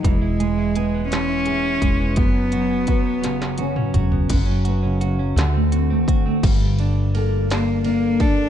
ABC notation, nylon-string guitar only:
X:1
M:6/8
L:1/16
Q:3/8=56
K:F#mix
V:1 name="Nylon-string guitar"
E,2 G,2 B,2 G,2 E2 G,2 | F,,2 F,2 B,2 C,2 C2 F,2 | [F,,C] F, B, C, C F, [=D,F] =A, =C A, F A, | [K:Gdor] G,,2 D2 A2 B,2 D2 B,2 |]